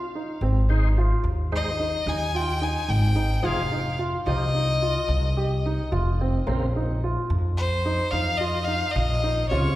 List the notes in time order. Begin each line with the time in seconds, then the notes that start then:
0.15 D#4
0.41 G#1 C4
0.69 G#3 D#4 C5
0.98 F4
1.24 D#2
1.52 G#3 D#4 C5 D#5
1.80 D#4
2.06 D#2 D#4 G#5
2.35 F4 G5
2.61 D#4 G#5
2.89 G#1 G5
3.15 D#4
3.43 F1 F3 D#4 F4 G#4 F5
3.72 D#4
3.99 F4
4.26 C2 F3 D#4 F4 G4 D#5
4.55 D#4
4.82 F4
5.08 C2
5.37 G4
5.66 D#4
5.92 F1 F4
6.21 C4
6.47 A#1 C#3 A#3 C4
6.76 D#4
7.04 F4
7.30 F2
7.57 C5
7.85 D#4
8.11 F2 D#4 F5
8.37 F4 D#5
8.65 D#4 F5
8.91 D#5
8.96 A#1
9.23 D#4
9.49 C#2 C3 C#3 F4 C#5